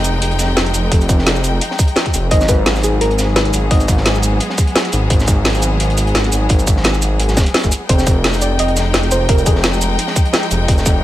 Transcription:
Already playing: detuned saw bass F1, string section F3 G#3 D#4 G5
0.04 closed hi-hat, shaker
0.22 detuned saw bass F1, closed hi-hat
0.31 closed hi-hat
0.39 snare, closed hi-hat, shaker
0.57 snare, closed hi-hat
0.66 closed hi-hat
0.74 detuned saw bass F1, closed hi-hat, shaker
0.92 detuned saw bass F1, kick, closed hi-hat
1.01 closed hi-hat, shaker
1.09 detuned saw bass F1, kick, closed hi-hat, shaker
1.19 snare
1.27 snare, closed hi-hat
1.36 shaker
1.44 closed hi-hat, shaker
1.61 closed hi-hat
1.71 snare
1.79 kick, closed hi-hat, shaker
1.88 closed hi-hat
1.96 snare, closed hi-hat
2.06 kick, closed hi-hat
2.14 detuned saw bass F1, closed hi-hat, shaker
2.31 detuned saw bass G#1, string section F#3 G#3 B3 G#4, synth pluck D#5, kick, closed hi-hat
2.41 snare, shaker
2.48 detuned saw bass G#1, synth pluck B4, kick, closed hi-hat, shaker
2.66 snare, closed hi-hat, open hi-hat
2.76 snare, shaker
2.83 synth pluck G#4, closed hi-hat, shaker
3.01 detuned saw bass G#1, synth pluck A#4, closed hi-hat
3.11 closed hi-hat
3.19 snare, closed hi-hat, shaker
3.36 synth pluck B4, snare, closed hi-hat
3.45 closed hi-hat
3.53 detuned saw bass G#1, closed hi-hat, shaker
3.71 detuned saw bass G#1, synth pluck D#5, kick, closed hi-hat
3.80 closed hi-hat, shaker
3.88 detuned saw bass G#1, kick, closed hi-hat, shaker
3.97 snare
4.06 snare, closed hi-hat
4.15 shaker
4.22 closed hi-hat, shaker
4.40 closed hi-hat
4.50 snare
4.58 kick, closed hi-hat, shaker
4.67 closed hi-hat
4.76 snare, closed hi-hat
4.85 closed hi-hat
4.92 detuned saw bass G#1, closed hi-hat, shaker
5.10 detuned saw bass G#1, kick, closed hi-hat
5.20 snare, shaker
5.28 detuned saw bass G#1, kick, closed hi-hat, shaker
5.45 snare, closed hi-hat, open hi-hat
5.54 snare, shaker
5.62 closed hi-hat, shaker
5.80 detuned saw bass G#1, closed hi-hat
5.90 closed hi-hat
5.97 closed hi-hat, shaker
6.07 closed hi-hat
6.15 snare, closed hi-hat
6.24 closed hi-hat
6.32 detuned saw bass G#1, closed hi-hat, shaker
6.49 detuned saw bass G#1, kick, closed hi-hat
6.59 closed hi-hat, shaker
6.67 detuned saw bass G#1, kick, closed hi-hat, shaker
6.77 snare
6.84 snare, closed hi-hat
6.94 shaker
7.02 closed hi-hat, shaker
7.20 closed hi-hat
7.29 snare, closed hi-hat, shaker
7.37 detuned saw bass D#1, kick, snare, closed hi-hat, open hi-hat, shaker
7.46 closed hi-hat
7.54 snare, closed hi-hat, open hi-hat
7.63 detuned saw bass F#1, kick, closed hi-hat, shaker
7.72 closed hi-hat, shaker
7.89 detuned saw bass F1, string section F3 G#3 D#4 G5, synth pluck C5, kick, closed hi-hat
7.99 snare, shaker
8.07 detuned saw bass F1, kick, closed hi-hat, shaker
8.24 snare, closed hi-hat, open hi-hat
8.33 snare, shaker
8.42 synth pluck D5, closed hi-hat, shaker
8.59 detuned saw bass F1, synth pluck D#5, closed hi-hat
8.68 closed hi-hat
8.76 snare, closed hi-hat, shaker
8.94 snare, closed hi-hat
9.03 closed hi-hat
9.11 detuned saw bass F1, synth pluck C5, closed hi-hat, shaker
9.29 detuned saw bass F1, synth pluck A#4, kick, closed hi-hat
9.38 closed hi-hat, shaker
9.46 detuned saw bass F1, synth pluck G#4, kick, closed hi-hat, shaker
9.55 snare
9.64 snare, closed hi-hat
9.73 shaker
9.81 closed hi-hat, shaker
9.99 closed hi-hat
10.07 snare
10.16 kick, closed hi-hat, shaker
10.25 closed hi-hat
10.33 snare, closed hi-hat
10.43 closed hi-hat
10.51 detuned saw bass F1, closed hi-hat, shaker
10.68 detuned saw bass F1, kick, closed hi-hat
10.78 snare, shaker
10.86 detuned saw bass F1, kick, closed hi-hat, shaker

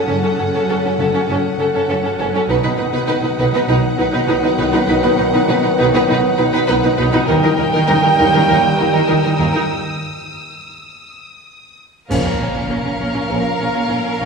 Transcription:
Already playing: trombone section C#3 F#3, french horn section C#4 A4, violin section F#5 A5 D#6
0.08 double bass section F#1, cello section F#2, viola section C#4, violin section A4
0.23 cello section F#2, viola section C#4, violin section A4
0.37 double bass section F#1, cello section F#2, viola section C#4, violin section A4
0.54 cello section F#2, viola section C#4, violin section A4
0.68 double bass section F#1, cello section F#2, viola section C#4, violin section A4
0.85 cello section F#2, viola section C#4, violin section A4
0.97 double bass section F#1, cello section F#2, viola section C#4, violin section A4
1.15 cello section F#2, viola section C#4, violin section A4
1.27 double bass section F#1, cello section F#2, viola section C#4, violin section A4
1.57 double bass section F#1, cello section F#2, viola section C#4, violin section A4
1.75 cello section F#2, viola section C#4, violin section A4
1.87 double bass section F#1, cello section F#2, viola section C#4, violin section A4
2.03 cello section F#2, viola section C#4, violin section A4
2.18 double bass section F#1, cello section F#2, viola section C#4, violin section A4
2.34 cello section F#2, viola section C#4, violin section A4
2.48 double bass section B1, cello section B2, trombone section D#3 F#3, french horn section B3 B4, viola section D#4, violin section B4 F#5
2.63 cello section B2, viola section D#4, violin section B4
2.78 double bass section B1, cello section B2, viola section D#4, violin section B4
2.92 cello section B2, viola section D#4, violin section B4
3.07 double bass section B1, cello section B2, viola section D#4, violin section B4
3.22 cello section B2, viola section D#4, violin section B4
3.38 double bass section B1, cello section B2, viola section D#4, violin section B4
3.53 cello section B2, viola section D#4, violin section B4
3.68 double bass section B1, cello section B2, viola section D#4, violin section B4
3.98 double bass section B1, cello section B2, viola section D#4, violin section B4
4.12 cello section B2, viola section D#4, violin section B4
4.27 double bass section B1, cello section B2, viola section D#4, violin section B4
4.43 cello section B2, viola section D#4, violin section B4
4.57 double bass section B1, cello section B2, viola section D#4, violin section B4
4.73 cello section B2, viola section D#4, violin section B4
4.87 double bass section B1, cello section B2, viola section D#4, violin section B4
5.03 cello section B2, viola section D#4, violin section B4
5.17 double bass section B1, cello section B2, viola section D#4, violin section B4
5.32 cello section B2, viola section D#4, violin section B4
5.48 double bass section B1, cello section B2, viola section D#4, violin section B4
5.63 cello section B2, viola section D#4, violin section B4
5.78 double bass section B1, cello section B2, viola section D#4, violin section B4
5.93 cello section B2, viola section D#4, violin section B4
6.08 double bass section B1, cello section B2, viola section D#4, violin section B4
6.38 double bass section B1, cello section B2, viola section D#4, violin section B4
6.52 cello section B2, viola section D#4, violin section B4
6.68 double bass section B1, cello section B2, viola section D#4, violin section B4
6.83 cello section B2, viola section D#4, violin section B4
6.97 double bass section B1, cello section B2, viola section D#4, violin section B4
7.13 cello section B2, viola section D#4, violin section B4
7.27 double bass section D#2, cello section D#3, trombone section D#3 G3, french horn section A#3 G4, viola section D#4, violin section A#4 G5 D#6 E6
7.43 cello section D#3, viola section D#4, violin section A#4
7.57 double bass section D#2, cello section D#3, viola section D#4, violin section A#4
7.72 cello section D#3, viola section D#4, violin section A#4
7.87 double bass section D#2, cello section D#3, viola section D#4, violin section A#4
8.02 cello section D#3, viola section D#4, violin section A#4
8.18 double bass section D#2, cello section D#3, viola section D#4, violin section A#4
8.33 cello section D#3, viola section D#4, violin section A#4
8.48 double bass section D#2, cello section D#3, viola section D#4, violin section A#4
8.77 double bass section D#2, cello section D#3, viola section D#4, violin section A#4
8.92 cello section D#3, viola section D#4, violin section A#4
9.07 double bass section D#2, cello section D#3, viola section D#4, violin section A#4
9.23 cello section D#3, viola section D#4, violin section A#4
9.37 double bass section D#2, cello section D#3, viola section D#4, violin section A#4
9.52 cello section D#3, viola section D#4, violin section A#4
12.09 double bass section A#1, cello section A#2, trombone section C#3 F3, french horn section A#3 A#4, viola section C#4, violin section A#4 F5 A#5 C#6 F6, concert bass drum, crash, sub drop
12.24 cello section A#2, viola section C#4
12.39 double bass section A#1, cello section A#2, viola section C#4
12.53 cello section A#2, viola section C#4
12.68 double bass section A#1, cello section A#2, viola section C#4
12.84 cello section A#2, viola section C#4
12.99 double bass section A#1, cello section A#2, viola section C#4
13.13 cello section A#2, viola section C#4
13.29 double bass section A#1, cello section A#2, trombone section C#3 F3, french horn section A#3 A#4, viola section C#4
13.59 double bass section A#1, cello section A#2, viola section C#4
13.74 cello section A#2, viola section C#4
13.88 double bass section A#1, cello section A#2, viola section C#4
14.03 cello section A#2, viola section C#4
14.18 double bass section A#1, cello section A#2, viola section C#4

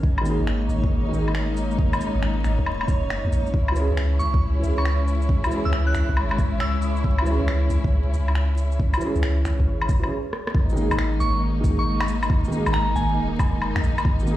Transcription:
Already playing: felt piano D#3 A#3 G#4, synth texture C#4 C#5
0.03 808-style bass G#1, string section G#3 A#3 D#4, kick
0.18 felt piano D#3, low woodblock
0.25 felt piano A#3 G#4, shaker
0.39 808-style bass G#1
0.47 finger snap
0.69 808-style bass G#1, shaker
0.84 kick
1.09 808-style bass G#1, felt piano D#3 A#3
1.14 felt piano G#4, shaker
1.28 low woodblock
1.35 finger snap
1.57 shaker
1.71 shaker
1.79 kick
1.93 low woodblock, shaker
2.01 shaker
2.15 808-style bass G#1
2.23 finger snap
2.44 808-style bass G#1, finger snap, shaker
2.59 kick
2.66 808-style bass D#1, low woodblock
2.81 low woodblock
2.88 kick, shaker
3.10 808-style bass F#1, finger snap
3.25 808-style bass D#2
3.32 808-style bass A#1, shaker
3.47 shaker
3.54 808-style bass C#2, string section G#3 C#4 E4, kick
3.68 felt piano E3, low woodblock
3.76 felt piano C#4, shaker
3.80 felt piano G#4
3.91 808-style bass C#2
3.97 finger snap
4.19 808-style bass C#2, synth bell C#6, shaker
4.34 kick
4.59 felt piano E3 C#4
4.64 808-style bass C#2, felt piano G#4, shaker
4.78 synth bell C#6, low woodblock
4.85 finger snap
5.08 shaker
5.22 shaker
5.29 kick
5.44 felt piano E3, low woodblock, shaker
5.51 felt piano C#4 G#4, shaker
5.65 808-style bass C#2, synth bell E6
5.73 finger snap
5.87 synth bell F#6
5.95 808-style bass C#2, finger snap, shaker
6.09 kick
6.16 808-style bass G#1, low woodblock
6.31 low woodblock
6.39 kick, shaker
6.60 808-style bass C#2, synth bell E6, finger snap
6.82 shaker
6.97 shaker
7.04 808-style bass C#2, kick
7.18 felt piano E3, low woodblock
7.26 felt piano C#4 G#4, shaker
7.40 808-style bass C#2
7.48 finger snap
7.70 808-style bass C#2, shaker
7.84 kick
8.14 808-style bass C#2, shaker
8.28 low woodblock
8.35 finger snap
8.58 shaker
8.72 shaker
8.80 kick
8.94 felt piano E3, low woodblock, shaker
9.01 felt piano C#4, shaker
9.05 felt piano G#4
9.15 808-style bass C#2, shaker
9.23 finger snap
9.45 808-style bass C#2, finger snap, shaker
9.60 kick
9.67 808-style bass G#1
9.81 low woodblock
9.89 kick, shaker
10.00 felt piano E3 C#4, low woodblock
10.08 felt piano G#4
10.33 cross-stick
10.47 cross-stick
10.54 808-style bass G#1, string section G#3 A#3 D#4, kick
10.70 felt piano D#3, shaker
10.77 felt piano A#3, shaker
10.81 felt piano G#4
10.91 808-style bass G#1, low woodblock, shaker
10.99 finger snap
11.20 808-style bass G#1, synth bell C#6, shaker
11.61 808-style bass G#1, felt piano D#3 A#3, kick, shaker
11.68 felt piano G#4
11.79 synth bell C#6
12.00 finger snap, low woodblock
12.08 shaker
12.23 low woodblock, shaker
12.30 kick
12.44 felt piano D#3, shaker
12.52 felt piano A#3 G#4, shaker
12.66 808-style bass G#1, low woodblock, shaker
12.73 synth bell A#5, finger snap
12.95 808-style bass G#1, synth bell G#5, shaker
13.18 808-style bass D#1
13.39 kick, low woodblock, shaker
13.61 808-style bass F#1, low woodblock
13.76 808-style bass D#2, finger snap
13.83 808-style bass A#1, shaker
13.98 low woodblock, shaker
14.05 808-style bass G#1, kick
14.20 felt piano D#3, shaker
14.27 felt piano A#3, shaker
14.31 felt piano G#4

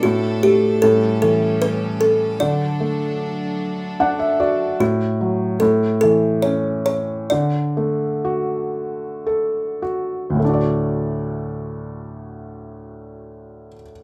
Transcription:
Already playing: string section A4
0.03 string section A2 A3 D4, felt piano A2, kalimba F#4
0.43 felt piano A3, kalimba G4
0.82 felt piano A2, string section G3 C#4, kalimba A4
1.22 felt piano E3, kalimba A4
1.62 kalimba B4
2.01 kalimba A4
2.40 felt piano D3, string section F#3 D4, kalimba D5
2.80 felt piano A3
4.00 felt piano D4 F#5
4.19 felt piano E5
4.40 felt piano F#4 D5
4.80 felt piano A2, kalimba F#4
5.21 felt piano F#3
5.60 felt piano A2, kalimba A4
6.01 felt piano E3, kalimba A4
6.42 felt piano C#4, kalimba C#5
6.86 kalimba C#5
7.30 felt piano D3, kalimba D5
7.77 felt piano A3
8.25 felt piano F#4
9.26 felt piano A4
9.82 felt piano F#4
10.30 felt piano D2
10.35 felt piano A2
10.39 felt piano A3
10.44 felt piano D4
10.49 felt piano F#4
10.54 felt piano D5

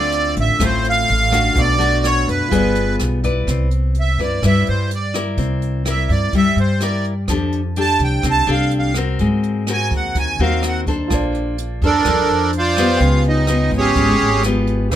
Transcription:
Already playing: upright bass D2, nylon-string guitar D3 A3 C4 F4, grand piano F4 A4 C5 E6, accordion D5
0.12 closed hi-hat
0.36 upright bass A1, kick, closed hi-hat
0.41 accordion E5
0.60 upright bass A1, nylon-string guitar A2 A3 C4 F4, kick, cross-stick, closed hi-hat
0.65 accordion C5
0.84 closed hi-hat
0.89 accordion F5
1.08 upright bass A1, closed hi-hat
1.31 nylon-string guitar A3 D4 F#4, kick, cross-stick, closed hi-hat
1.54 upright bass B1, nylon-string guitar B2, grand piano F#4 A4, kick, closed hi-hat
1.58 accordion D5, grand piano D5 C#6
1.79 nylon-string guitar A3 D4 F#4, closed hi-hat
2.04 accordion C#5, cross-stick, closed hi-hat
2.28 upright bass F#2, accordion B4, kick, closed hi-hat
2.49 upright bass G1, nylon-string guitar G3 B3 F4 G#4, grand piano F4 G#4 B4, kick, closed hi-hat
2.55 grand piano D5
2.75 closed hi-hat
2.99 upright bass B1, cross-stick, closed hi-hat
3.23 nylon-string guitar E4 B4 D5, kick, closed hi-hat
3.47 upright bass C2, nylon-string guitar C4, kick, cross-stick, closed hi-hat
3.71 closed hi-hat
3.94 closed hi-hat
4.00 accordion E5
4.19 upright bass G2, nylon-string guitar E4 B4 D5, accordion D5, kick, closed hi-hat
4.43 upright bass G2, nylon-string guitar G3 E4 B4 D5, accordion E5, kick, cross-stick, closed hi-hat
4.67 upright bass G2, accordion C5, closed hi-hat
4.91 closed hi-hat
4.95 accordion D5
5.14 nylon-string guitar E4 A#4 D5, cross-stick, closed hi-hat
5.37 upright bass C2, nylon-string guitar C4, kick, closed hi-hat
5.62 closed hi-hat
5.85 nylon-string guitar E4 A#4 D5, cross-stick, closed hi-hat
5.90 accordion E5
6.09 upright bass G2, accordion D5, kick, closed hi-hat
6.33 upright bass G2, nylon-string guitar G3, kick, closed hi-hat
6.37 accordion E5
6.56 upright bass G2, closed hi-hat
6.60 accordion C5
6.80 nylon-string guitar E4 A#4 D5, accordion D5, cross-stick, closed hi-hat
7.04 closed hi-hat
7.28 upright bass F2, nylon-string guitar F3 D4 G4 A4, kick, cross-stick, closed hi-hat
7.52 closed hi-hat
7.76 nylon-string guitar D4 G4 A4, closed hi-hat
7.80 accordion A5
7.99 upright bass C2, kick, closed hi-hat
8.04 accordion G5
8.23 upright bass C2, nylon-string guitar C4, kick, cross-stick, closed hi-hat
8.31 accordion A5
8.47 upright bass C2, nylon-string guitar D4 G4 A4, closed hi-hat
8.51 accordion F5
8.71 closed hi-hat
8.79 accordion F5
8.94 nylon-string guitar C4 F#4 A#4, cross-stick, closed hi-hat
9.19 upright bass G#2, nylon-string guitar G#3, kick, closed hi-hat
9.43 closed hi-hat
9.67 nylon-string guitar C4 F#4 A#4, cross-stick, closed hi-hat
9.73 accordion G#5
9.91 upright bass D#2, kick, closed hi-hat
9.96 accordion F#5
10.15 upright bass D#2, nylon-string guitar D#3, accordion G#5, kick, closed hi-hat
10.39 upright bass D#2, nylon-string guitar C4 F#4 A#4, accordion F5, closed hi-hat
10.63 cross-stick, closed hi-hat
10.68 accordion F#5
10.87 nylon-string guitar D4 A4 C5, kick, closed hi-hat
11.08 upright bass A#1, nylon-string guitar A#3, grand piano F4 C5 A5, kick, cross-stick, closed hi-hat
11.14 grand piano D5
11.34 closed hi-hat
11.58 closed hi-hat
11.82 upright bass F2, nylon-string guitar D4 A4 C5, accordion D4 A4 A#4 D5, kick, closed hi-hat
12.04 upright bass F2, nylon-string guitar F3 D4 C5, kick, cross-stick, closed hi-hat
12.28 upright bass F2, closed hi-hat
12.53 closed hi-hat
12.58 accordion F4 C5 D5 F5
12.77 nylon-string guitar B3 F4 G4, cross-stick, closed hi-hat
12.97 upright bass C#2, grand piano B4 G5, kick, closed hi-hat
13.01 nylon-string guitar C#3, grand piano F5
13.24 closed hi-hat
13.28 accordion D#4 D#5
13.47 nylon-string guitar B3 F4, cross-stick, closed hi-hat
13.71 upright bass G#1, kick, closed hi-hat
13.78 accordion C#4 G4 G#4 C#5
13.96 upright bass G#1, nylon-string guitar G#3, kick, closed hi-hat
14.20 upright bass G#1, closed hi-hat
14.43 nylon-string guitar B3 F4 G4, cross-stick, closed hi-hat
14.67 closed hi-hat
14.90 upright bass C2, nylon-string guitar C4 E4 B4, grand piano G4 B4, kick, cross-stick, closed hi-hat

